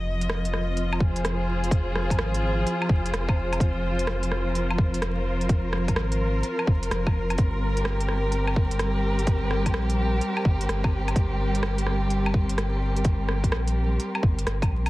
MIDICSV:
0, 0, Header, 1, 5, 480
1, 0, Start_track
1, 0, Key_signature, -4, "minor"
1, 0, Tempo, 472441
1, 1739, Time_signature, 4, 2, 24, 8
1, 15137, End_track
2, 0, Start_track
2, 0, Title_t, "Synth texture"
2, 0, Program_c, 0, 99
2, 0, Note_on_c, 0, 60, 88
2, 0, Note_on_c, 0, 84, 86
2, 15137, Note_off_c, 0, 60, 0
2, 15137, Note_off_c, 0, 84, 0
2, 15137, End_track
3, 0, Start_track
3, 0, Title_t, "String section"
3, 0, Program_c, 1, 48
3, 0, Note_on_c, 1, 53, 83
3, 0, Note_on_c, 1, 75, 86
3, 248, Note_on_c, 1, 65, 91
3, 993, Note_off_c, 1, 75, 0
3, 1020, Note_on_c, 1, 68, 91
3, 1055, Note_on_c, 1, 72, 83
3, 4493, Note_on_c, 1, 70, 96
3, 4620, Note_off_c, 1, 68, 0
3, 7505, Note_off_c, 1, 53, 0
3, 7506, Note_off_c, 1, 72, 0
3, 7508, Note_on_c, 1, 55, 77
3, 7927, Note_on_c, 1, 67, 94
3, 8521, Note_off_c, 1, 65, 0
3, 15137, Note_off_c, 1, 55, 0
3, 15137, Note_off_c, 1, 67, 0
3, 15137, Note_off_c, 1, 70, 0
3, 15137, End_track
4, 0, Start_track
4, 0, Title_t, "Sub bass"
4, 0, Program_c, 2, 38
4, 0, Note_on_c, 2, 29, 96
4, 2138, Note_on_c, 2, 32, 81
4, 2153, Note_off_c, 2, 29, 0
4, 2689, Note_off_c, 2, 32, 0
4, 2940, Note_on_c, 2, 29, 97
4, 3167, Note_off_c, 2, 29, 0
4, 3174, Note_on_c, 2, 29, 99
4, 3646, Note_off_c, 2, 29, 0
4, 3659, Note_on_c, 2, 29, 100
4, 5975, Note_on_c, 2, 32, 84
4, 5991, Note_off_c, 2, 29, 0
4, 6528, Note_off_c, 2, 32, 0
4, 6780, Note_on_c, 2, 29, 100
4, 7007, Note_off_c, 2, 29, 0
4, 7018, Note_on_c, 2, 29, 101
4, 7488, Note_off_c, 2, 29, 0
4, 7501, Note_on_c, 2, 31, 102
4, 9816, Note_on_c, 2, 34, 83
4, 9832, Note_off_c, 2, 31, 0
4, 10369, Note_off_c, 2, 34, 0
4, 10614, Note_on_c, 2, 31, 101
4, 10843, Note_off_c, 2, 31, 0
4, 10854, Note_on_c, 2, 31, 99
4, 11326, Note_off_c, 2, 31, 0
4, 11336, Note_on_c, 2, 31, 101
4, 13651, Note_on_c, 2, 34, 85
4, 13667, Note_off_c, 2, 31, 0
4, 14206, Note_off_c, 2, 34, 0
4, 14457, Note_on_c, 2, 31, 100
4, 14685, Note_off_c, 2, 31, 0
4, 14693, Note_on_c, 2, 31, 78
4, 14923, Note_off_c, 2, 31, 0
4, 14933, Note_on_c, 2, 34, 93
4, 15137, Note_off_c, 2, 34, 0
4, 15137, End_track
5, 0, Start_track
5, 0, Title_t, "Drums"
5, 217, Note_on_c, 9, 42, 57
5, 300, Note_on_c, 9, 37, 105
5, 319, Note_off_c, 9, 42, 0
5, 401, Note_off_c, 9, 37, 0
5, 459, Note_on_c, 9, 42, 56
5, 544, Note_on_c, 9, 37, 58
5, 560, Note_off_c, 9, 42, 0
5, 646, Note_off_c, 9, 37, 0
5, 783, Note_on_c, 9, 42, 57
5, 884, Note_off_c, 9, 42, 0
5, 941, Note_on_c, 9, 77, 67
5, 1020, Note_on_c, 9, 36, 104
5, 1043, Note_off_c, 9, 77, 0
5, 1122, Note_off_c, 9, 36, 0
5, 1178, Note_on_c, 9, 42, 56
5, 1266, Note_off_c, 9, 42, 0
5, 1266, Note_on_c, 9, 37, 107
5, 1266, Note_on_c, 9, 42, 59
5, 1368, Note_off_c, 9, 37, 0
5, 1368, Note_off_c, 9, 42, 0
5, 1662, Note_on_c, 9, 42, 31
5, 1739, Note_on_c, 9, 36, 118
5, 1744, Note_off_c, 9, 42, 0
5, 1744, Note_on_c, 9, 42, 58
5, 1841, Note_off_c, 9, 36, 0
5, 1846, Note_off_c, 9, 42, 0
5, 1986, Note_on_c, 9, 37, 62
5, 2087, Note_off_c, 9, 37, 0
5, 2137, Note_on_c, 9, 36, 64
5, 2145, Note_on_c, 9, 42, 60
5, 2145, Note_on_c, 9, 77, 37
5, 2221, Note_on_c, 9, 37, 107
5, 2238, Note_off_c, 9, 36, 0
5, 2246, Note_off_c, 9, 42, 0
5, 2246, Note_off_c, 9, 77, 0
5, 2323, Note_off_c, 9, 37, 0
5, 2382, Note_on_c, 9, 42, 56
5, 2484, Note_off_c, 9, 42, 0
5, 2710, Note_on_c, 9, 42, 59
5, 2812, Note_off_c, 9, 42, 0
5, 2863, Note_on_c, 9, 77, 66
5, 2940, Note_on_c, 9, 36, 108
5, 2964, Note_off_c, 9, 77, 0
5, 3042, Note_off_c, 9, 36, 0
5, 3105, Note_on_c, 9, 42, 58
5, 3186, Note_off_c, 9, 42, 0
5, 3186, Note_on_c, 9, 37, 106
5, 3186, Note_on_c, 9, 42, 60
5, 3287, Note_off_c, 9, 37, 0
5, 3287, Note_off_c, 9, 42, 0
5, 3337, Note_on_c, 9, 36, 106
5, 3343, Note_on_c, 9, 77, 64
5, 3439, Note_off_c, 9, 36, 0
5, 3445, Note_off_c, 9, 77, 0
5, 3582, Note_on_c, 9, 42, 33
5, 3582, Note_on_c, 9, 77, 62
5, 3659, Note_on_c, 9, 36, 122
5, 3666, Note_off_c, 9, 42, 0
5, 3666, Note_on_c, 9, 42, 59
5, 3683, Note_off_c, 9, 77, 0
5, 3761, Note_off_c, 9, 36, 0
5, 3768, Note_off_c, 9, 42, 0
5, 4056, Note_on_c, 9, 42, 57
5, 4138, Note_on_c, 9, 37, 109
5, 4158, Note_off_c, 9, 42, 0
5, 4240, Note_off_c, 9, 37, 0
5, 4298, Note_on_c, 9, 42, 57
5, 4385, Note_on_c, 9, 37, 62
5, 4399, Note_off_c, 9, 42, 0
5, 4487, Note_off_c, 9, 37, 0
5, 4626, Note_on_c, 9, 42, 58
5, 4727, Note_off_c, 9, 42, 0
5, 4780, Note_on_c, 9, 77, 64
5, 4860, Note_on_c, 9, 36, 110
5, 4882, Note_off_c, 9, 77, 0
5, 4962, Note_off_c, 9, 36, 0
5, 5020, Note_on_c, 9, 42, 57
5, 5100, Note_off_c, 9, 42, 0
5, 5100, Note_on_c, 9, 37, 112
5, 5100, Note_on_c, 9, 42, 57
5, 5201, Note_off_c, 9, 37, 0
5, 5201, Note_off_c, 9, 42, 0
5, 5497, Note_on_c, 9, 42, 32
5, 5580, Note_off_c, 9, 42, 0
5, 5580, Note_on_c, 9, 36, 119
5, 5580, Note_on_c, 9, 42, 55
5, 5682, Note_off_c, 9, 36, 0
5, 5682, Note_off_c, 9, 42, 0
5, 5819, Note_on_c, 9, 37, 64
5, 5921, Note_off_c, 9, 37, 0
5, 5977, Note_on_c, 9, 36, 64
5, 5977, Note_on_c, 9, 42, 54
5, 5977, Note_on_c, 9, 77, 35
5, 6058, Note_on_c, 9, 37, 111
5, 6078, Note_off_c, 9, 36, 0
5, 6079, Note_off_c, 9, 42, 0
5, 6079, Note_off_c, 9, 77, 0
5, 6160, Note_off_c, 9, 37, 0
5, 6217, Note_on_c, 9, 42, 54
5, 6318, Note_off_c, 9, 42, 0
5, 6536, Note_on_c, 9, 42, 56
5, 6638, Note_off_c, 9, 42, 0
5, 6695, Note_on_c, 9, 77, 62
5, 6780, Note_on_c, 9, 36, 107
5, 6797, Note_off_c, 9, 77, 0
5, 6882, Note_off_c, 9, 36, 0
5, 6937, Note_on_c, 9, 42, 54
5, 7023, Note_off_c, 9, 42, 0
5, 7023, Note_on_c, 9, 37, 112
5, 7023, Note_on_c, 9, 42, 56
5, 7124, Note_off_c, 9, 37, 0
5, 7124, Note_off_c, 9, 42, 0
5, 7178, Note_on_c, 9, 36, 105
5, 7178, Note_on_c, 9, 77, 58
5, 7280, Note_off_c, 9, 36, 0
5, 7280, Note_off_c, 9, 77, 0
5, 7419, Note_on_c, 9, 42, 31
5, 7419, Note_on_c, 9, 77, 59
5, 7497, Note_off_c, 9, 42, 0
5, 7497, Note_on_c, 9, 42, 53
5, 7501, Note_on_c, 9, 36, 117
5, 7520, Note_off_c, 9, 77, 0
5, 7599, Note_off_c, 9, 42, 0
5, 7603, Note_off_c, 9, 36, 0
5, 7894, Note_on_c, 9, 42, 53
5, 7977, Note_on_c, 9, 37, 105
5, 7996, Note_off_c, 9, 42, 0
5, 8078, Note_off_c, 9, 37, 0
5, 8134, Note_on_c, 9, 42, 53
5, 8215, Note_on_c, 9, 37, 60
5, 8235, Note_off_c, 9, 42, 0
5, 8316, Note_off_c, 9, 37, 0
5, 8453, Note_on_c, 9, 42, 53
5, 8554, Note_off_c, 9, 42, 0
5, 8610, Note_on_c, 9, 77, 61
5, 8699, Note_on_c, 9, 36, 105
5, 8711, Note_off_c, 9, 77, 0
5, 8801, Note_off_c, 9, 36, 0
5, 8851, Note_on_c, 9, 42, 53
5, 8933, Note_off_c, 9, 42, 0
5, 8933, Note_on_c, 9, 37, 107
5, 8933, Note_on_c, 9, 42, 55
5, 9035, Note_off_c, 9, 37, 0
5, 9035, Note_off_c, 9, 42, 0
5, 9335, Note_on_c, 9, 42, 29
5, 9417, Note_off_c, 9, 42, 0
5, 9417, Note_on_c, 9, 42, 52
5, 9418, Note_on_c, 9, 36, 113
5, 9518, Note_off_c, 9, 42, 0
5, 9520, Note_off_c, 9, 36, 0
5, 9659, Note_on_c, 9, 37, 60
5, 9761, Note_off_c, 9, 37, 0
5, 9815, Note_on_c, 9, 42, 53
5, 9815, Note_on_c, 9, 77, 37
5, 9816, Note_on_c, 9, 36, 61
5, 9895, Note_on_c, 9, 37, 101
5, 9917, Note_off_c, 9, 36, 0
5, 9917, Note_off_c, 9, 42, 0
5, 9917, Note_off_c, 9, 77, 0
5, 9997, Note_off_c, 9, 37, 0
5, 10055, Note_on_c, 9, 42, 54
5, 10157, Note_off_c, 9, 42, 0
5, 10377, Note_on_c, 9, 42, 51
5, 10478, Note_off_c, 9, 42, 0
5, 10533, Note_on_c, 9, 77, 64
5, 10617, Note_on_c, 9, 36, 102
5, 10635, Note_off_c, 9, 77, 0
5, 10718, Note_off_c, 9, 36, 0
5, 10777, Note_on_c, 9, 42, 53
5, 10861, Note_off_c, 9, 42, 0
5, 10861, Note_on_c, 9, 37, 104
5, 10861, Note_on_c, 9, 42, 54
5, 10963, Note_off_c, 9, 37, 0
5, 10963, Note_off_c, 9, 42, 0
5, 11014, Note_on_c, 9, 36, 100
5, 11015, Note_on_c, 9, 77, 62
5, 11115, Note_off_c, 9, 36, 0
5, 11116, Note_off_c, 9, 77, 0
5, 11257, Note_on_c, 9, 42, 31
5, 11257, Note_on_c, 9, 77, 60
5, 11336, Note_on_c, 9, 36, 111
5, 11338, Note_off_c, 9, 42, 0
5, 11338, Note_on_c, 9, 42, 55
5, 11359, Note_off_c, 9, 77, 0
5, 11438, Note_off_c, 9, 36, 0
5, 11439, Note_off_c, 9, 42, 0
5, 11734, Note_on_c, 9, 42, 55
5, 11815, Note_on_c, 9, 37, 102
5, 11835, Note_off_c, 9, 42, 0
5, 11917, Note_off_c, 9, 37, 0
5, 11972, Note_on_c, 9, 42, 55
5, 12055, Note_on_c, 9, 37, 57
5, 12074, Note_off_c, 9, 42, 0
5, 12157, Note_off_c, 9, 37, 0
5, 12297, Note_on_c, 9, 42, 56
5, 12399, Note_off_c, 9, 42, 0
5, 12457, Note_on_c, 9, 77, 67
5, 12536, Note_on_c, 9, 36, 101
5, 12559, Note_off_c, 9, 77, 0
5, 12638, Note_off_c, 9, 36, 0
5, 12693, Note_on_c, 9, 42, 53
5, 12779, Note_off_c, 9, 42, 0
5, 12779, Note_on_c, 9, 37, 102
5, 12779, Note_on_c, 9, 42, 57
5, 12881, Note_off_c, 9, 37, 0
5, 12881, Note_off_c, 9, 42, 0
5, 13172, Note_on_c, 9, 42, 32
5, 13254, Note_off_c, 9, 42, 0
5, 13254, Note_on_c, 9, 42, 57
5, 13257, Note_on_c, 9, 36, 116
5, 13356, Note_off_c, 9, 42, 0
5, 13358, Note_off_c, 9, 36, 0
5, 13499, Note_on_c, 9, 37, 60
5, 13601, Note_off_c, 9, 37, 0
5, 13653, Note_on_c, 9, 36, 61
5, 13656, Note_on_c, 9, 42, 58
5, 13737, Note_on_c, 9, 37, 99
5, 13754, Note_off_c, 9, 36, 0
5, 13758, Note_off_c, 9, 42, 0
5, 13839, Note_off_c, 9, 37, 0
5, 13894, Note_on_c, 9, 42, 58
5, 13996, Note_off_c, 9, 42, 0
5, 14220, Note_on_c, 9, 42, 57
5, 14322, Note_off_c, 9, 42, 0
5, 14375, Note_on_c, 9, 77, 70
5, 14457, Note_on_c, 9, 36, 107
5, 14477, Note_off_c, 9, 77, 0
5, 14558, Note_off_c, 9, 36, 0
5, 14615, Note_on_c, 9, 42, 55
5, 14698, Note_off_c, 9, 42, 0
5, 14698, Note_on_c, 9, 37, 105
5, 14698, Note_on_c, 9, 42, 58
5, 14799, Note_off_c, 9, 37, 0
5, 14799, Note_off_c, 9, 42, 0
5, 14856, Note_on_c, 9, 36, 102
5, 14859, Note_on_c, 9, 42, 33
5, 14859, Note_on_c, 9, 77, 67
5, 14957, Note_off_c, 9, 36, 0
5, 14961, Note_off_c, 9, 42, 0
5, 14961, Note_off_c, 9, 77, 0
5, 15098, Note_on_c, 9, 42, 32
5, 15098, Note_on_c, 9, 77, 65
5, 15137, Note_off_c, 9, 42, 0
5, 15137, Note_off_c, 9, 77, 0
5, 15137, End_track
0, 0, End_of_file